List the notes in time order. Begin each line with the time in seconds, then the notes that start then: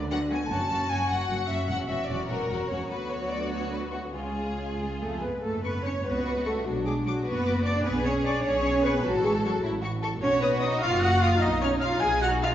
Already playing: D2 D3
0.11 F#3 B3 F#4 F#5
0.30 F#3 B3 F#4 G#5
0.50 F#1 F#2 F#3 C#4 F#4 A5
0.70 F#1 F#2 F#3 C#4 F#4
0.89 F#1 F#2 F#3 C#4 F#4 G#5
1.08 F#1 F#2 F#3 C#4 F#4 F#5
1.28 F#1 F#2 F#3 C#4 F#4
1.48 F#1 F#2 F#3 C#4 F#4 E5
1.67 E1 E2 F#3 C#4 F#4 F#5
1.88 E1 E2 F#3 C#4 F#4 E5
2.08 E1 E2 F#3 C#4 F#4 D5
2.28 E1 E2 F#3 C#4 F#4 A#4
2.48 E1 E2 F#3 C#4 F#4
2.69 E1 E2 F#3 C#4 F#4 C#5
2.89 D2 F#3 B3 F#4 B4
3.12 C#5
3.32 D5
3.53 C#5
3.73 B4
3.94 F#4
4.15 C#2 G#3 C#4 F4 G#4
4.79 C#2 G#3 G#4
5.00 F2 A3 A4
5.21 G#2 B3 B4
5.43 F#1 A3 A4
5.64 B3 B4 C#6
5.84 C#4 C#5 C#6
6.04 C#2 B3 F#4 B4
6.26 C#6
6.44 A3 A4 C#6
6.64 B1 F#3 D4 F#4
6.84 G#3 G#4 D6
7.04 F#3 F#4 D6
7.24 F#1 B3 F#4 B4
7.46 D6
7.64 D4 D5 D6
7.84 B1 B3 G#4 B4
8.04 C#4 C#5 C#6
8.25 D4 D5 C#6
8.43 B1 C#4 G#4 C#5
8.65 C#6
8.84 B3 B4 C#6
9.03 A1 F#3 F#4 A4
9.23 G#3 G#4 C#6
9.43 F#3 F#4 C#6
9.62 A1 E4
9.82 F#4 C#6
10.03 A4 C#6
10.22 B1 C#4 F#4 C#5
10.42 B3 B4 D#6
10.62 D#4 D#5 D#6
10.81 F#1 F4 F5
11.02 F#4 F#5 D#6
11.20 F4 F5 D#6
11.40 B1 D#4 D#5
11.61 C#4 C#5 F6
11.80 F4 F5 F6
12.01 B1 G#4 G#5
12.22 F#4 F#5 F6
12.43 F4 F5 F6